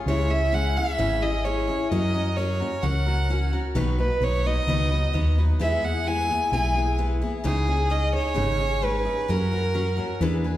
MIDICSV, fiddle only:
0, 0, Header, 1, 2, 480
1, 0, Start_track
1, 0, Tempo, 460829
1, 68, Time_signature, 4, 2, 24, 8
1, 11012, End_track
2, 0, Start_track
2, 0, Title_t, "Fiddle"
2, 0, Program_c, 0, 110
2, 78, Note_on_c, 0, 73, 84
2, 320, Note_on_c, 0, 76, 92
2, 335, Note_off_c, 0, 73, 0
2, 561, Note_on_c, 0, 78, 100
2, 576, Note_off_c, 0, 76, 0
2, 800, Note_on_c, 0, 76, 92
2, 816, Note_off_c, 0, 78, 0
2, 1276, Note_on_c, 0, 75, 83
2, 1292, Note_off_c, 0, 76, 0
2, 1506, Note_on_c, 0, 73, 81
2, 1522, Note_off_c, 0, 75, 0
2, 1980, Note_off_c, 0, 73, 0
2, 1986, Note_on_c, 0, 75, 91
2, 2464, Note_on_c, 0, 73, 80
2, 2479, Note_off_c, 0, 75, 0
2, 2953, Note_on_c, 0, 78, 80
2, 2968, Note_off_c, 0, 73, 0
2, 3672, Note_off_c, 0, 78, 0
2, 4161, Note_on_c, 0, 71, 79
2, 4413, Note_on_c, 0, 73, 86
2, 4428, Note_off_c, 0, 71, 0
2, 4653, Note_on_c, 0, 75, 96
2, 4669, Note_off_c, 0, 73, 0
2, 5602, Note_off_c, 0, 75, 0
2, 5851, Note_on_c, 0, 76, 86
2, 6092, Note_on_c, 0, 78, 83
2, 6107, Note_off_c, 0, 76, 0
2, 6324, Note_on_c, 0, 80, 96
2, 6340, Note_off_c, 0, 78, 0
2, 6793, Note_off_c, 0, 80, 0
2, 6799, Note_on_c, 0, 80, 83
2, 7242, Note_off_c, 0, 80, 0
2, 7767, Note_on_c, 0, 68, 86
2, 8241, Note_on_c, 0, 75, 91
2, 8257, Note_off_c, 0, 68, 0
2, 8476, Note_off_c, 0, 75, 0
2, 8482, Note_on_c, 0, 73, 100
2, 9212, Note_on_c, 0, 71, 91
2, 9228, Note_off_c, 0, 73, 0
2, 9685, Note_on_c, 0, 70, 86
2, 9701, Note_off_c, 0, 71, 0
2, 10637, Note_off_c, 0, 70, 0
2, 11012, End_track
0, 0, End_of_file